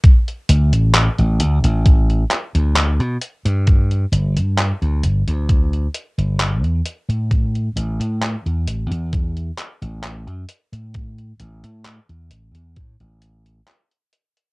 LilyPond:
<<
  \new Staff \with { instrumentName = "Slap bass" } { \clef bass \time 4/4 \key a \mixolydian \tempo 4 = 66 r8 d,16 a,,8 a,,16 d,16 a,,8. r16 d,8 b,16 r16 g,16~ | g,8 g,,16 g,8 d,16 g,,16 d,8. r16 g,,8 e,16 r16 a,16~ | a,8 a,,16 a,8 e,16 a,,16 e,8. r16 a,,8 fis,16 r16 a,16~ | a,8 a,,16 a,8 e,16 a,,16 e,16 a,16 a,,8. r4 | }
  \new DrumStaff \with { instrumentName = "Drums" } \drummode { \time 4/4 <hh bd>16 hh16 hh16 hh16 <hc hh>16 hh16 hh16 hh16 <hh bd>16 hh16 <hc hh>16 hh16 <hc hh>16 hh16 hh16 hh16 | <hh bd>16 hh16 hh16 hh16 <hc hh>16 hh16 hh16 hh16 <hh bd>16 hh16 hh16 hh16 <hc hh>16 hh16 hh16 hh16 | <hh bd>16 hh16 hh16 hh16 <hc hh>16 hh16 hh16 hh16 <hh bd>16 hh16 <hc hh>16 hh16 <hc hh>16 hh16 hh16 hh16 | <hh bd>16 hh16 hh16 hh16 <hc hh>16 hh16 hh16 hh16 <hh bd>16 hh16 hh16 hh16 <hc hh>16 hh16 hh16 hh16 | }
>>